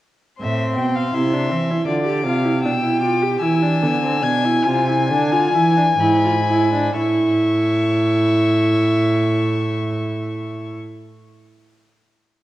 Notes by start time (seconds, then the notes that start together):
0.40 A2 C4 E5 C6
0.76 B2 G5
0.95 F5
1.13 C3 E4 E5
1.33 D4
1.50 E3 C4
1.70 E4
1.87 D3 F4 D5 D6
2.07 G4
2.25 C3 F4 F5
2.45 E4
2.63 B2 D4 G5 E6
2.84 E4
3.02 F4 D6
3.23 G4
3.41 E3 E4 G#5 E6
3.63 D4
3.82 D3 B3
4.03 C4
4.22 B2 D4 G#6
4.45 E4
4.65 C3 F4 G#5
4.88 E4
5.09 D3 D4
5.32 F4
5.54 E3 E4
5.77 D4
6.00 G#2 E4 B5
6.24 F4
6.49 E4
6.73 D4
6.98 A2 E4 E5 C#6